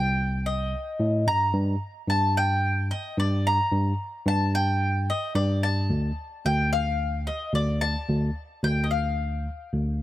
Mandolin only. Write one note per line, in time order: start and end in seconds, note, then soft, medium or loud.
0.00 0.47 G5 loud
0.46 1.30 D#5 medium
1.28 2.09 A#5 loud
2.10 2.37 A5 loud
2.37 2.87 G5 loud
2.91 3.19 D#5 medium
3.20 3.46 D5 medium
3.47 4.27 A#5 loud
4.28 4.54 A5 loud
4.55 5.10 G5 loud
5.10 5.34 D#5 medium
5.35 5.63 D5 loud
5.63 6.45 A5 loud
6.46 6.72 G5 loud
6.73 7.28 F5 loud
7.27 7.52 D#5 medium
7.55 7.82 D5 medium
7.81 8.64 A5 loud
8.64 8.85 G5 loud
8.84 8.90 D#5 medium
8.91 9.69 F5 medium